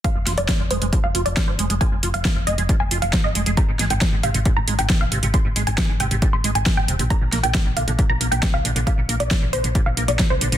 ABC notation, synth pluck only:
X:1
M:4/4
L:1/16
Q:1/4=136
K:Bbmix
V:1 name="Synth pluck"
f2 z d2 z c2 z f z d z c2 z | a2 z f2 z e2 z a z f z e2 z | b2 z g2 z f2 z b z g z f2 z | c'2 z a2 z g2 z c' z a z g2 z |
b2 z g2 z f2 z b z g z f2 z | f2 z d2 z c2 z f z d z c2 z |]